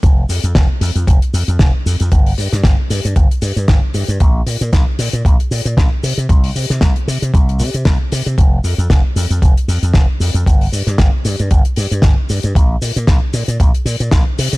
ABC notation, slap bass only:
X:1
M:4/4
L:1/16
Q:"Swing 16ths" 1/4=115
K:Gphr
V:1 name="Slap bass" clef=bass
F,,, z F,, F,, F,,, z F,, F,, F,,, z F,, F,, F,,, z F,, F,, | G,,, z G,, G,, G,,, z G,, G,, G,,, z G,, G,, G,,, z G,, G,, | B,,, z B,, B,, B,,, z B,, B,, B,,, z B,, B,, B,,, z C, C, | C,, z C, C, C,, z C, C, C,,2 C, C, C,, z C, C, |
F,,, z F,, F,, F,,, z F,, F,, F,,, z F,, F,, F,,, z F,, F,, | G,,, z G,, G,, G,,, z G,, G,, G,,, z G,, G,, G,,, z G,, G,, | B,,, z B,, B,, B,,, z B,, B,, B,,, z B,, B,, B,,, z C, C, |]